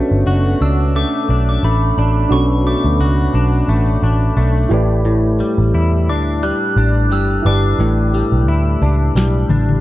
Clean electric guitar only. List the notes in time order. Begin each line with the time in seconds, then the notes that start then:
Already playing: B2 A3 D4 F#4
0.27 F#4
0.62 D4
0.96 A3
1.30 D4
1.64 A3
1.99 D4
2.32 B2
2.67 A3
3.01 F#4
3.35 D4
3.69 A3
4.03 D4
4.37 A3
4.71 A2
5.05 A2
5.40 G3
5.75 E4
6.09 D4
6.43 G3
6.78 D4
7.12 G3
7.46 D4
7.80 A2
8.14 G3
8.48 E4
8.82 D4
9.16 G3
9.50 D4